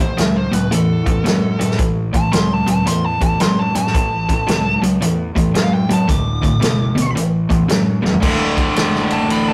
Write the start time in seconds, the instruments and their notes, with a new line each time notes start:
Already playing: fingered electric bass A1
0.00 overdriven electric guitar A2 E3, lead electric guitar C5
0.17 fingered electric bass C#2, overdriven electric guitar A2 F#3, lead electric guitar E5, snare, closed hi-hat
0.36 lead electric guitar C5
0.52 fingered electric bass C#2, overdriven electric guitar A2 F#3, lead electric guitar B4, closed hi-hat
0.71 fingered electric bass E2, overdriven electric guitar A2 E3, lead electric guitar A4, closed hi-hat
1.06 fingered electric bass E2, overdriven electric guitar A2 E3, kick, closed hi-hat
1.24 fingered electric bass F#2, overdriven electric guitar A2 F#3, snare, closed hi-hat
1.60 fingered electric bass F#2, overdriven electric guitar A2 F#3, closed hi-hat
1.71 snare
1.79 fingered electric bass A1, overdriven electric guitar A2 E3, kick, closed hi-hat
2.13 overdriven electric guitar A2 E3, lead electric guitar A5, kick, closed hi-hat
2.32 fingered electric bass C#2, overdriven electric guitar A2 F#3, lead electric guitar C6, snare, closed hi-hat
2.53 lead electric guitar A5
2.66 fingered electric bass C#2, overdriven electric guitar A2 F#3, lead electric guitar A5, closed hi-hat
2.86 fingered electric bass E2, overdriven electric guitar A2 E3, lead electric guitar C6, closed hi-hat
3.06 lead electric guitar A5
3.21 fingered electric bass E2, overdriven electric guitar A2 E3, lead electric guitar A5, kick, closed hi-hat
3.40 fingered electric bass F#2, overdriven electric guitar A2 F#3, lead electric guitar C6, snare, closed hi-hat
3.59 lead electric guitar A5
3.75 fingered electric bass F#2, overdriven electric guitar A2 F#3, lead electric guitar A5, closed hi-hat
3.87 snare
3.94 fingered electric bass A1, overdriven electric guitar A2 E3, kick, closed hi-hat
4.29 overdriven electric guitar A2 E3, kick, closed hi-hat
4.47 fingered electric bass C#2, overdriven electric guitar A2 F#3, snare, closed hi-hat
4.82 fingered electric bass C#2, overdriven electric guitar A2 F#3, closed hi-hat
5.01 fingered electric bass E2, overdriven electric guitar A2 E3, closed hi-hat
5.35 fingered electric bass E2, overdriven electric guitar A2 E3, kick, closed hi-hat
5.54 fingered electric bass F#2, overdriven electric guitar A2 F#3, lead electric guitar F5, snare, closed hi-hat
5.74 lead electric guitar G5
5.89 fingered electric bass F#2, overdriven electric guitar A2 F#3, lead electric guitar A5, closed hi-hat
6.08 fingered electric bass D1, overdriven electric guitar D2 A2, lead electric guitar D6, kick, closed hi-hat
6.42 overdriven electric guitar D2 A2, kick, closed hi-hat
6.61 fingered electric bass F#1, overdriven electric guitar D2 B2, snare, closed hi-hat
6.95 fingered electric bass G#1, overdriven electric guitar D2 B2, closed hi-hat
7.15 fingered electric bass A1, overdriven electric guitar A2 E3, closed hi-hat
7.49 fingered electric bass E2, overdriven electric guitar A2 E3, kick, closed hi-hat
7.68 fingered electric bass F#2, overdriven electric guitar A2 F#3, snare, closed hi-hat
8.02 fingered electric bass E1, overdriven electric guitar A2 F#3, snare
8.14 floor tom
8.21 fingered electric bass D1, overdriven electric guitar D2 A2 D3, kick, crash
8.57 kick, ride
8.76 fingered electric bass F#1, snare, ride
8.95 snare
9.10 fingered electric bass F#1, lead electric guitar A5, ride
9.28 fingered electric bass A1, lead electric guitar B5, ride
9.48 lead electric guitar A5